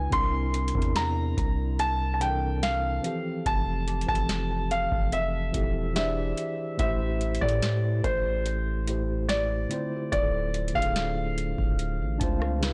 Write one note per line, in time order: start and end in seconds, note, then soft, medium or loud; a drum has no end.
0.00 0.14 C#3 medium
0.00 0.14 G#3 medium
0.00 0.14 D#4 medium
0.00 0.14 F4 medium
0.00 0.14 B4 medium
0.00 0.15 G#5 loud
0.10 0.72 C2 loud
0.10 0.60 C3 medium
0.10 0.61 C4 medium
0.10 0.61 D4 medium
0.10 0.62 E4 medium
0.10 0.98 C6 loud
0.10 kick loud
0.10 closed hi-hat medium
0.15 0.63 A#4 loud
0.54 closed hi-hat medium
0.68 closed hi-hat medium
0.72 1.35 E2 medium
0.72 1.88 C3 medium
0.72 1.88 C4 medium
0.72 1.89 D4 medium
0.72 1.90 E4 medium
0.72 kick medium
0.77 1.90 A#4 medium
0.82 closed hi-hat medium
0.96 1.82 A#5 loud
0.96 snare loud
0.96 closed hi-hat medium
1.37 3.00 C2 loud
1.37 kick loud
1.37 closed hi-hat medium
1.79 2.12 A5 loud
1.79 closed hi-hat medium
2.14 2.21 A5 medium
2.18 3.03 C3 medium
2.18 3.03 E3 medium
2.18 3.02 C4 medium
2.18 3.04 D4 medium
2.18 2.64 G5 loud
2.18 closed hi-hat medium
2.23 2.28 A4 medium
2.30 3.09 A#4 medium
2.63 3.48 F5 medium
2.63 snare loud
2.63 closed hi-hat medium
3.02 3.87 E3 medium
3.02 3.86 F3 medium
3.02 3.87 C4 medium
3.02 3.88 G4 medium
3.02 closed hi-hat medium
3.07 3.89 A4 medium
3.46 4.06 F1 loud
3.46 4.05 A5 loud
3.46 kick loud
3.46 closed hi-hat medium
3.88 5.35 G4 medium
3.88 closed hi-hat medium
4.01 closed hi-hat medium
4.06 4.88 F1 loud
4.06 5.23 E3 medium
4.06 5.21 F3 medium
4.06 5.22 C4 medium
4.06 5.23 G4 medium
4.06 4.73 A5 loud
4.06 kick loud
4.11 5.24 A4 medium
4.15 closed hi-hat medium
4.29 snare loud
4.29 closed hi-hat medium
4.71 5.14 F5 medium
4.71 closed hi-hat medium
4.92 5.52 F1 loud
4.92 kick loud
5.12 5.94 E5 loud
5.12 closed hi-hat medium
5.52 6.34 E1 loud
5.52 5.95 F3 medium
5.52 5.96 C4 medium
5.52 5.94 E4 medium
5.52 5.94 G4 medium
5.52 kick medium
5.52 closed hi-hat medium
5.57 5.97 A4 medium
5.94 6.61 E3 medium
5.94 7.17 D4 medium
5.94 6.62 E4 medium
5.94 6.62 G4 medium
5.94 6.63 G#4 medium
5.94 6.63 C5 medium
5.94 6.75 E5 medium
5.94 snare loud
5.94 closed hi-hat medium
5.98 6.64 D5 medium
6.38 closed hi-hat medium
6.77 7.39 A1 loud
6.77 7.27 A2 loud
6.77 7.28 A3 loud
6.77 7.28 E4 medium
6.77 7.29 G4 medium
6.77 7.44 E5 medium
6.77 kick loud
6.77 closed hi-hat medium
6.82 7.29 C5 loud
7.21 closed hi-hat medium
7.35 closed hi-hat medium
7.39 8.55 A2 medium
7.39 8.02 A2 loud
7.39 8.55 A3 medium
7.39 8.56 E4 medium
7.39 8.57 G4 medium
7.39 8.06 D5 medium
7.39 kick medium
7.44 8.57 A4 medium
7.49 closed hi-hat medium
7.62 snare loud
7.62 closed hi-hat medium
8.04 9.67 A1 loud
8.04 8.83 C5 medium
8.04 kick loud
8.04 closed hi-hat medium
8.46 closed hi-hat medium
8.85 9.70 A2 medium
8.85 9.69 A3 medium
8.85 9.70 E4 medium
8.85 9.71 G4 medium
8.85 closed hi-hat medium
8.90 9.72 C5 medium
9.29 10.11 D5 medium
9.29 snare loud
9.29 closed hi-hat medium
9.69 10.53 D3 medium
9.69 10.54 A3 medium
9.69 11.18 C4 medium
9.69 10.54 E4 medium
9.69 10.55 F4 medium
9.69 closed hi-hat medium
9.73 10.55 C5 medium
9.96 11.42 G4 medium
10.12 10.73 D1 loud
10.12 10.77 D5 medium
10.12 kick loud
10.12 closed hi-hat medium
10.22 11.65 A4 medium
10.54 closed hi-hat soft
10.68 closed hi-hat medium
10.73 11.55 D1 loud
10.73 11.88 D3 medium
10.73 11.89 A3 medium
10.73 11.89 D4 medium
10.73 11.90 F4 medium
10.73 12.59 F5 loud
10.73 kick medium
10.77 10.83 G#4 medium
10.82 11.94 A4 medium
10.82 closed hi-hat medium
10.96 snare loud
10.96 closed hi-hat medium
11.38 closed hi-hat medium
11.58 12.02 D1 loud
11.58 kick loud
11.79 closed hi-hat medium
12.00 12.20 A1 loud
12.18 12.73 C#2 loud
12.18 12.62 A3 medium
12.18 12.73 C4 medium
12.18 12.62 C4 medium
12.18 12.61 D4 medium
12.18 12.62 F4 medium
12.18 12.42 A5 loud
12.18 kick medium
12.18 closed hi-hat medium
12.23 12.64 C5 medium
12.40 12.73 F5 medium
12.40 cross-stick medium
12.60 12.73 C#3 loud
12.60 12.73 G#3 medium
12.60 12.73 D#4 medium
12.60 12.73 F4 medium
12.60 snare loud
12.60 closed hi-hat medium
12.65 12.73 B4 loud